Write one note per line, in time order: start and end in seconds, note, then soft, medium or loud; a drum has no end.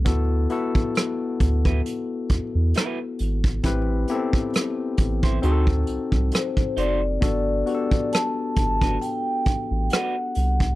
0.05 0.47 D2 medium
0.05 0.43 B3 medium
0.05 0.44 E4 medium
0.05 0.44 F#4 medium
0.05 0.44 A4 medium
0.05 kick loud
0.05 closed hi-hat medium
0.50 1.99 B3 medium
0.50 2.00 E4 medium
0.50 2.00 F#4 medium
0.50 2.00 A4 medium
0.50 closed hi-hat medium
0.75 kick medium
0.95 cross-stick loud
0.95 closed hi-hat medium
1.40 1.81 D2 medium
1.40 kick medium
1.40 closed hi-hat medium
1.65 1.81 E4 soft
1.65 1.81 F#4 medium
1.65 1.80 B4 medium
1.65 kick medium
1.86 closed hi-hat medium
2.29 2.40 E2 soft
2.29 kick medium
2.29 closed hi-hat soft
2.55 2.73 E2 medium
2.74 2.98 E4 medium
2.74 2.98 F#4 medium
2.74 2.99 B4 medium
2.74 cross-stick medium
2.74 closed hi-hat medium
3.19 3.61 G#1 medium
3.19 closed hi-hat medium
3.44 kick loud
3.63 4.05 A1 medium
3.63 4.01 C4 medium
3.63 4.02 E4 medium
3.63 4.02 G4 medium
3.63 4.03 B4 medium
3.63 kick medium
3.63 closed hi-hat medium
4.08 4.16 B3 medium
4.08 5.44 E4 medium
4.08 5.44 G4 medium
4.08 5.44 A4 medium
4.08 closed hi-hat medium
4.15 5.41 C4 medium
4.33 kick medium
4.54 cross-stick loud
4.54 closed hi-hat medium
4.97 5.39 A1 medium
4.97 kick medium
4.97 closed hi-hat medium
5.23 5.39 E4 soft
5.23 5.38 G4 medium
5.23 5.38 C5 medium
5.23 kick medium
5.42 5.84 D2 loud
5.42 6.92 C4 medium
5.42 5.66 D#4 medium
5.42 6.92 D#4 medium
5.42 5.66 F#4 medium
5.42 6.93 F#4 medium
5.42 5.51 G#4 medium
5.42 5.67 C5 medium
5.42 closed hi-hat medium
5.51 6.96 A4 medium
5.67 kick medium
5.87 5.98 C2 soft
5.87 closed hi-hat soft
6.12 6.31 C2 medium
6.12 kick medium
6.31 6.80 C5 medium
6.31 muted clean electric guitar stroke soft
6.31 cross-stick medium
6.31 closed hi-hat medium
6.57 kick medium
6.77 7.18 F#1 medium
6.77 7.00 D#4 medium
6.77 7.01 F#4 medium
6.77 7.01 C5 medium
6.77 8.09 D5 medium
6.77 closed hi-hat medium
7.21 7.63 G1 medium
7.21 7.59 B3 medium
7.21 7.59 D4 medium
7.21 7.60 F#4 medium
7.21 7.60 A4 medium
7.21 kick loud
7.21 closed hi-hat medium
7.66 9.15 B3 medium
7.66 9.16 D4 medium
7.66 9.16 F#4 medium
7.66 7.75 G4 medium
7.66 closed hi-hat medium
7.75 9.20 A4 medium
7.91 kick medium
8.12 9.05 A5 medium
8.12 cross-stick loud
8.12 closed hi-hat medium
8.56 8.98 G1 medium
8.56 kick medium
8.56 closed hi-hat medium
8.81 8.97 D4 soft
8.81 8.97 F#4 soft
8.81 8.96 B4 medium
8.81 kick medium
9.02 9.87 G5 medium
9.02 closed hi-hat medium
9.45 9.56 A1 soft
9.45 kick medium
9.45 closed hi-hat soft
9.71 9.90 A1 medium
9.90 10.15 D4 medium
9.90 10.15 F#4 medium
9.90 10.70 F#5 medium
9.90 cross-stick medium
9.90 closed hi-hat medium
9.94 10.15 B4 medium
10.35 10.75 C2 medium
10.35 closed hi-hat medium
10.60 kick medium